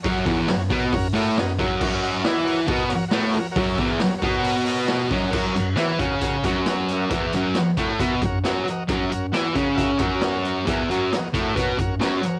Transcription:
<<
  \new Staff \with { instrumentName = "Transistor combo organ" } { \time 4/4 \key fis \mixolydian \tempo 4 = 135 <fis' ais' cis''>8 <fis' ais' cis''>8 <fis' ais' cis''>8 <fis' ais' cis''>8 <fis' ais' cis''>8 <fis' ais' cis''>8 <fis' ais' dis''>8 <fis' ais' cis''>8 | <fis' ais' cis''>8 <fis' ais' dis''>8 <fis' ais' dis''>8 <fis' ais' cis''>8 <fis' ais' dis''>8 <fis' ais' cis''>8 <fis' ais' cis''>8 <fis' ais' cis''>8 | <fis' ais' cis''>8 <fis' ais' e''>8 <fis' ais' cis''>8 <fis' ais' cis''>8 <fis' ais' cis''>8 <fis' ais' cis''>8 <fis' ais' dis''>8 <fis' ais' dis''>8 | <fis' ais' cis''>8 <fis' ais' cis''>8 <fis' ais' cis''>8 <fis' ais' cis''>8 <fis' ais' cis''>8 <fis' ais' cis''>8 <fis' ais' cis''>8 <fis' ais' e''>8 |
<fis' ais' e''>8 <fis' ais' cis''>8 <fis' ais' cis''>8 <fis' ais' cis''>8 <fis' ais' e''>8 <fis' ais' cis''>8 <fis' ais' cis''>8 <fis' ais' dis''>8 | <fis' ais' cis''>8 <fis' ais' cis''>8 <fis' ais' cis''>8 <fis' ais' cis''>8 <fis' ais' e''>8 <fis' ais' cis''>8 <fis' ais' cis''>8 <fis' ais' cis''>8 | <fis' ais' e''>8 <fis' ais' cis''>8 <fis' ais' dis''>8 <fis' ais' e''>8 <fis' ais' cis''>8 <fis' ais' cis''>8 <fis' ais' cis''>8 <fis' ais' cis''>8 | }
  \new Staff \with { instrumentName = "Distorted electric guitar" } { \clef bass \time 4/4 \key fis \mixolydian <fis, fis>8 <e, e>8 fis,8 <b, b>8 fis,8 <a, a>8 fis,8 <fis, fis>8 | <fis, fis>4 <e e'>4 <b, b>8 r8 <a, a>8 r8 | <fis, fis>8 <e, e>8 fis,8 <b, b>2 <fis, fis>8 | <fis, fis>8 fis,8 <e e'>8 <cis cis'>4 <fis, fis>4. |
<e, e>8 <fis, fis>8 r8 <a, a>8 <b, b>8 fis,8 <fis, fis>8 r8 | <fis, fis>8 fis,8 <e e'>8 <cis cis'>4 <fis, fis>4. | <e, e>8 <fis, fis>8 r8 <a, a>8 <b, b>8 fis,8 <fis, fis>8 r8 | }
  \new DrumStaff \with { instrumentName = "Drums" } \drummode { \time 4/4 <hho bd>8 <hho bd>8 <hho sn>8 <hho bd>8 <hho bd>8 hho8 <hho sn>8 <hho bd>8 | <cymc bd>8 hho8 <hho sn>8 hho8 <hho bd>8 hho8 <hho sn>8 hho8 | <hho bd>8 <hho bd>8 <hho sn>8 <hho bd>8 hho8 hho8 <hho sn>8 <hho bd>8 | <cymc bd>8 hh8 <hh sn>8 <hh bd>8 <hh bd>8 <hh bd>8 <hh sn>8 hh8 |
<hh bd>8 hh8 <hh sn>8 <hh bd>8 <hh bd>8 <hh bd>8 <hh sn>8 hh8 | <hh bd>8 hh8 <hh sn>8 <hh bd>8 <hh bd>8 <hh bd>8 <hh sn>8 hh8 | <hh bd>8 hh8 <hh sn>8 <hh bd>8 <hh bd>8 <hh bd>8 <hh sn>8 hh8 | }
>>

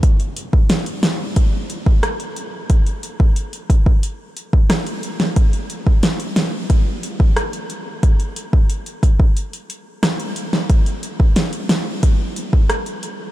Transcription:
\new DrumStaff \with { instrumentName = "Drums" } \drummode { \time 4/4 \tempo 4 = 90 <hh bd>16 hh16 hh16 bd16 <hh sn>16 hh16 <hh sn>8 <hh bd>8 hh16 bd16 <hh ss>16 hh16 hh8 | <hh bd>16 hh16 hh16 bd16 hh16 hh16 <hh bd>16 bd16 hh8 hh16 bd16 <hh ss sn>16 hh16 hh16 sn16 | <hh bd>16 hh16 hh16 bd16 <hh sn>16 hh16 <hh sn>8 <hh bd>8 hh16 bd16 <hh ss>16 hh16 hh8 | <hh bd>16 hh16 hh16 bd16 hh16 hh16 <hh bd>16 bd16 hh16 hh16 hh8 <hh ss sn>16 hh16 hh16 sn16 |
<hh bd>16 hh16 hh16 bd16 <hh sn>16 hh16 <hh sn>8 <hh bd>8 hh16 bd16 <hh ss>16 hh16 hh8 | }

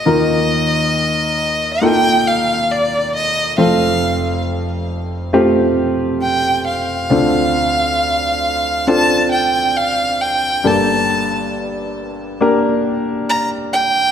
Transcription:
<<
  \new Staff \with { instrumentName = "Violin" } { \time 4/4 \key ees \lydian \tempo 4 = 68 ees''2 g''8 f''8 d''8 ees''8 | f''4 r2 g''8 f''8~ | f''2 a''8 g''8 f''8 g''8 | a''4 r2 bes''8 g''8 | }
  \new Staff \with { instrumentName = "Grand piano" } { \time 4/4 \key ees \lydian <bes ees' f' bes'>2 <bes ees' f' a'>2 | <a c' f' a'>2 <a c' f' g'>2 | <c' d' f' a'>2 <c' d' f' a'>2 | <bes d' g' a'>2 <bes d' g' bes'>2 | }
  \new Staff \with { instrumentName = "Grand piano" } { \clef bass \time 4/4 \key ees \lydian <ees, ees>1 | <f,, f,>1 | <d, d>1 | <g,, g,>1 | }
>>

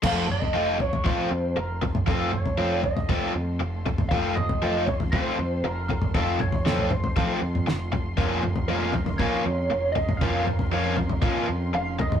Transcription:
<<
  \new Staff \with { instrumentName = "Lead electric guitar" } { \time 4/4 \tempo 4 = 118 f''8 ees''4 des''8 c''4 bes'8 bes'8 | a'8 des''4 ees''4 r4. | f''8 ees''4 des''8 c''4 bes'8 bes'8 | a'8 des''4 c''4 r4. |
r4 bes'4 des''4. ees''8 | f''8 bes'4. r4 f''8 ees''8 | }
  \new Staff \with { instrumentName = "String section" } { \time 4/4 << { <f' c'''>1~ | <f' c'''>1~ | <f' c'''>1~ | <f' c'''>1~ |
<f' c'''>1~ | <f' c'''>1 | } \\ { <a a'>1~ | <a a'>1~ | <a a'>1~ | <a a'>1 |
<des' bes'>1~ | <des' bes'>1 | } >> }
  \new Staff \with { instrumentName = "Overdriven electric guitar" } { \time 4/4 <f a c' f'>8 r8 <f a c' f'>8 r8 <f a c' f'>8 r4. | <f a c' f'>8 r8 <f a c' f'>8 r8 <f a c' f'>8 r4. | <f a c' f'>8 r8 <f a c' f'>8 r8 <f a c' f'>8 r4. | <f a c' f'>8 r8 <f a c' f'>8 r8 <f a c' f'>8 r4. |
<f bes des' f'>8 r8 <f bes des' f'>8 r8 <f bes des' f'>8 r4. | <f bes des' f'>8 r8 <f bes des' f'>8 r8 <f bes des' f'>8 r4. | }
  \new Staff \with { instrumentName = "Synth drone" } { \clef bass \time 4/4 f,1~ | f,1~ | f,1~ | f,1 |
f,1~ | f,1 | }
  \new Staff \with { instrumentName = "Fingered electric bass" } { \clef bass \time 4/4 f,,2 r8 f,8 f,,4 | f,,2 r8 f,8 f,,4 | f,,2 r8 f,8 f,,4 | f,,2 r8 f,8 f,,4 |
f,,2 r8 f,8 f,,4 | f,,2 r8 f,8 f,,4 | }
  \new DrumStaff \with { instrumentName = "Drums" } \drummode { \time 4/4 <cymc bd tomfh>8 toml16 tomfh16 r8 tomfh16 tomfh16 <bd tomfh>4 r8 tomfh16 <tomfh toml>16 | <bd tomfh>8 toml16 tomfh16 r8 tomfh16 tomfh16 <bd tomfh>4 r8 tomfh16 <tomfh toml>16 | <bd tomfh>8 toml16 tomfh16 r8 tomfh16 tomfh16 <bd tomfh>4 r8 tomfh16 <tomfh toml>16 | <bd tomfh>8 <tomfh toml>16 tomfh16 sn16 tomfh16 <tomfh toml>16 tomfh16 <bd tomfh>8. toml16 sn8 tomfh8 |
<bd tomfh>8 toml16 tomfh16 r8 tomfh16 tomfh16 <bd tomfh>4 r8 tomfh16 <tomfh toml>16 | <bd tomfh>8 toml16 tomfh16 r8 tomfh16 tomfh16 <bd tomfh>4 r8 tomfh16 <tomfh toml>16 | }
>>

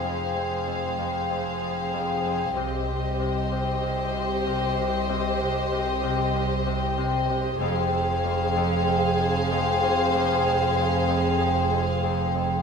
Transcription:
<<
  \new Staff \with { instrumentName = "Violin section" } { \time 4/4 \key f \minor \tempo 4 = 95 f''1 | ees''1~ | ees''1 | f''1~ |
f''1 | }
  \new Staff \with { instrumentName = "Violin section" } { \time 4/4 \key f \minor c''1 | c''1~ | c''1 | c''1~ |
c''1 | }
  \new Staff \with { instrumentName = "Viola section" } { \time 4/4 \key f \minor aes'1 | g'1~ | g'1 | aes'1~ |
aes'1 | }
  \new Staff \with { instrumentName = "Cello section" } { \clef bass \time 4/4 \key f \minor f,1 | c,1~ | c,1 | f,1~ |
f,1 | }
  \new Staff \with { instrumentName = "Harp" } { \clef bass \time 4/4 \key f \minor f,8 f,8 f,8 f,8 f,8 f,8 f,8 f,8 | c8 c8 c8 c8 c8 c8 c8 c8 | c8 c8 c8 c8 c8 c8 c8 c8 | f,8 f,8 f,8 f,8 f,8 f,8 f,8 f,8 |
f,8 f,8 f,8 f,8 f,8 f,8 f,8 f,8 | }
  \new Staff \with { instrumentName = "Double bass section" } { \clef bass \time 4/4 \key f \minor f,,1 | c,1~ | c,1 | f,,1~ |
f,,1 | }
>>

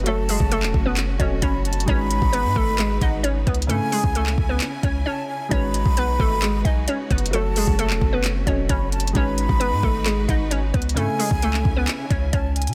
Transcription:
<<
  \new Staff \with { instrumentName = "Flute" } { \time 4/4 \key gis \phrygian \tempo 4 = 132 a''2 r4 b''8 a''8 | b''2~ b''8 fis''8 r4 | gis''2 r4 a''8 gis''8 | b''2~ b''8 gis''8 r4 |
a''2 r4 b''8 a''8 | b''2~ b''8 fis''8 r4 | gis''2 r4 a''8 gis''8 | }
  \new Staff \with { instrumentName = "Felt piano" } { \time 4/4 \key gis \phrygian <fis fis' a' cis''>2~ <fis fis' a' cis''>8 <fis fis' a' dis''>4. | <gis dis' fis' b'>1 | <cis cis' e'>1 | <gis dis' fis' b'>1 |
<fis fis' a' cis''>2~ <fis fis' a' cis''>8 <fis fis' a' dis''>4. | <gis dis' fis' b'>1 | <cis cis' e'>1 | }
  \new Staff \with { instrumentName = "Synth pluck" } { \time 4/4 \key gis \phrygian <a a'>8 <gis gis'>8 <a a'>8. <b b'>16 r8 <cis' cis''>8 <cis' cis''>4 | <cis' cis''>4 <b b'>8 <a a'>8 <gis gis'>8 <dis' dis''>8 <cis' cis''>8 <b b'>8 | <a a'>8 <gis gis'>8 <a a'>8. <b b'>16 r8 <cis' cis''>8 <cis' cis''>4 | <cis' cis''>4 <b b'>8 <a a'>8 <gis gis'>8 <dis' dis''>8 <cis' cis''>8 <b b'>8 |
<a a'>8 <gis gis'>8 <a a'>8. <b b'>16 r8 <cis' cis''>8 <cis' cis''>4 | <cis' cis''>4 <b b'>8 <a a'>8 <gis gis'>8 <dis' dis''>8 <cis' cis''>8 <b b'>8 | <a a'>8 <gis gis'>8 <a a'>8. <b b'>16 r8 <cis' cis''>8 <cis' cis''>4 | }
  \new Staff \with { instrumentName = "String section" } { \time 4/4 \key gis \phrygian << { a1 | <gis dis' b'>1 | <cis cis' gis''>1 | <gis dis' b'>1 |
a1 | <gis dis' b'>1 | <cis cis' gis''>1 | } \\ { <cis' fis'>1~ | <cis' fis'>1 | e'1 | fis'1 |
cis'1 | fis'1 | e'1 | } >> }
  \new Staff \with { instrumentName = "808-style bass" } { \clef bass \time 4/4 \key gis \phrygian fis,,8. fis,,8 e,,16 fis,,4 e,,8 fis,,4 | gis,,8. gis,,8 gis,16 gis,,4 gis,,4 cis,8 | gis,16 r8 cis,8. cis,8 r8 cis,8 r4 | gis,,8. b,,8. gis,,4 b,,8 r8 fis,,8~ |
fis,,8. fis,,8 e,,16 fis,,4 e,,8 fis,,4 | gis,,8. gis,,8 gis,16 gis,,4 gis,,4 cis,8 | gis,16 r8 cis,8. cis,8 r8 cis,8 cis,8. cis16 | }
  \new DrumStaff \with { instrumentName = "Drums" } \drummode { \time 4/4 hh8 hho16 bd16 hh16 hc16 bd8 <hc hh>8 <hh bd>8 \tuplet 3/2 { <hh bd>16 r16 r16 hh16 hh16 hh16 } | <hh bd>8 hh16 bd16 hh8 bd8 <hc hh>8 <hh bd>8 \tuplet 3/2 { hh16 r16 r16 <hh bd>16 hh16 hh16 } | hh8 hho16 bd16 hh16 hc16 bd8 <hc hh>8 <hh bd>8 r4 | <hh bd>8 hh16 bd16 hh8 bd8 <hc hh>8 <hh bd>8 \tuplet 3/2 { hh16 r16 r16 <hh bd>16 hh16 hh16 } |
hh8 hho16 bd16 hh16 hc16 bd8 <hc hh>8 <hh bd>8 \tuplet 3/2 { <hh bd>16 r16 r16 hh16 hh16 hh16 } | <hh bd>8 hh16 bd16 hh8 bd8 <hc hh>8 <hh bd>8 \tuplet 3/2 { hh16 r16 r16 <hh bd>16 hh16 hh16 } | hh8 hho16 bd16 hh16 hc16 bd8 <hc hh>8 <hh bd>8 <hh bd>8 hh32 hh32 hh16 | }
>>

